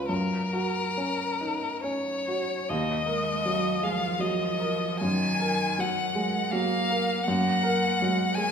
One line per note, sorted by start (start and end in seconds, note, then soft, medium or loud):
0.00 0.12 C#2 soft
0.00 0.12 C#4 soft
0.00 0.12 F4 soft
0.09 2.65 F#2 soft
0.09 1.81 A#4 medium
0.53 1.23 F#4 soft
0.97 1.67 C#4 soft
1.41 1.84 D#4 soft
1.84 2.54 C#4 soft
1.84 2.71 C#5 soft
2.28 2.70 F#4 soft
2.69 4.99 D#2 soft
2.69 3.05 A#3 soft
2.69 3.85 D#5 medium
3.06 3.49 G#3 soft
3.06 3.68 A#4 soft
3.46 4.06 F#3 soft
3.46 3.83 F#3 soft
3.83 5.01 F3 soft
3.83 4.21 G#3 soft
3.83 4.22 F5 medium
4.19 4.86 F#3 soft
4.19 5.00 D#5 soft
4.60 5.02 A#4 soft
5.01 7.21 F#2 soft
5.01 5.81 D#3 soft
5.01 5.82 G#5 medium
5.40 6.00 A#4 soft
5.79 6.38 F#3 soft
5.79 6.16 F#3 soft
5.79 6.53 F#5 soft
6.15 6.52 G#3 soft
6.15 6.53 G#3 soft
6.51 7.11 F#3 soft
6.51 7.26 A#3 soft
6.51 7.26 F5 medium
6.90 7.27 A#4 soft
7.24 8.52 F#2 soft
7.24 8.01 A#3 soft
7.24 8.37 F#5 medium
7.63 8.22 A#4 soft
8.00 8.52 F#3 soft
8.00 8.40 G#3 soft
8.35 8.52 F#3 soft
8.35 8.52 G#3 soft
8.35 8.52 G#5 medium